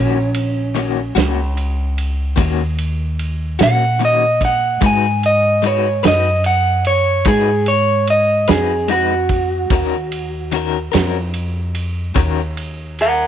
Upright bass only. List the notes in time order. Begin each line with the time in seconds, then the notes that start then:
Already playing: A#1
1.16 C#2
2.38 D#2
3.60 A#2
4.82 G#2
6.04 F#2
7.26 G#2
8.49 F2
9.71 D#2
10.94 F2
12.16 D#2